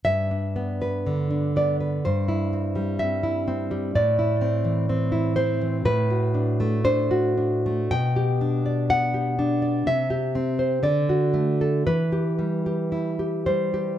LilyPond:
\new Staff \with { instrumentName = "Nylon-string guitar" } { \time 2/4 \key g \major \tempo 4 = 61 << { e''4. d''8 | c''4 e''4 | d''4. c''8 | b'4 c''4 |
g''4 fis''4 | e''4 d''8 r8 | b'4. c''8 | } \\ { g,16 d'16 b16 b'16 d16 d'16 b16 b'16 | g,16 e'16 c'16 g16 c'16 e'16 c'16 g16 | a,16 e'16 c'16 e16 c'16 e'16 c'16 e16 | a,16 fis'16 d'16 a16 d'16 fis'16 d'16 a16 |
b,16 g'16 d'16 d''16 b16 g'16 d'16 d''16 | c16 g'16 c'16 c''16 d16 fis'16 a16 a'16 | e16 g'16 g16 g'16 e'16 g'16 g16 g'16 | } >> }